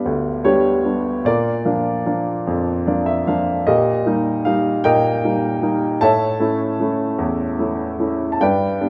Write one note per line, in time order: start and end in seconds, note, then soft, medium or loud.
0.00 1.22 G2 soft
0.00 0.44 G3 soft
0.00 0.44 B3 soft
0.00 0.45 D4 soft
0.00 0.42 G4 soft
0.00 0.50 B4 medium
0.05 1.23 D2 medium
0.44 0.83 G3 soft
0.44 0.84 B3 soft
0.44 0.83 D4 soft
0.44 1.22 G4 medium
0.44 1.28 C#5 medium
0.84 1.17 G3 soft
0.84 1.18 B3 soft
0.84 1.18 D4 soft
1.25 3.62 A#2 medium
1.25 3.24 F4 medium
1.25 3.24 A#4 medium
1.25 2.86 D5 medium
1.65 2.04 F3 soft
1.65 2.04 A#3 soft
1.65 2.05 D4 soft
2.06 2.71 F3 soft
2.06 2.71 A#3 soft
2.06 2.71 D4 soft
2.47 3.63 F2 soft
2.87 3.26 F3 soft
2.87 3.26 A#3 soft
2.87 3.27 D4 soft
2.87 3.06 D5 soft
3.06 3.25 E5 medium
3.27 3.59 F3 soft
3.27 3.59 A#3 soft
3.27 3.60 D4 soft
3.27 3.64 F5 medium
3.67 4.83 A#2 medium
3.67 4.81 G4 soft
3.67 4.81 A#4 soft
3.67 4.48 D#5 medium
4.06 4.44 G3 soft
4.06 4.44 A#3 soft
4.06 4.45 D#4 soft
4.45 5.09 G3 soft
4.45 5.08 A#3 soft
4.45 5.09 D#4 soft
4.45 4.86 F5 medium
4.84 5.98 A#2 medium
4.84 5.98 A#4 medium
4.84 5.98 D#5 medium
4.84 6.05 G5 medium
5.24 5.61 G3 soft
5.24 5.61 A#3 soft
5.24 5.61 D#4 soft
5.62 5.94 G3 soft
5.62 5.94 A#3 soft
5.62 5.94 D#4 soft
6.01 8.37 A2 medium
6.01 7.97 C#5 medium
6.01 7.97 E5 medium
6.01 7.96 A5 medium
6.40 6.79 A3 soft
6.40 6.79 C#4 soft
6.40 6.79 E4 soft
6.80 7.44 A3 soft
6.80 7.44 C#4 soft
6.80 7.44 E4 soft
7.19 8.37 E2 medium
7.59 7.97 A3 soft
7.59 7.98 C#4 soft
7.59 7.98 E4 soft
7.99 8.32 A3 soft
7.99 8.33 C#4 soft
7.99 8.33 E4 soft
8.32 8.40 A5 medium
8.41 8.89 G2 medium
8.41 8.89 B4 medium
8.41 8.89 D5 medium
8.41 8.89 G5 medium
8.81 8.89 G3 soft
8.81 8.89 B3 soft
8.81 8.89 D4 soft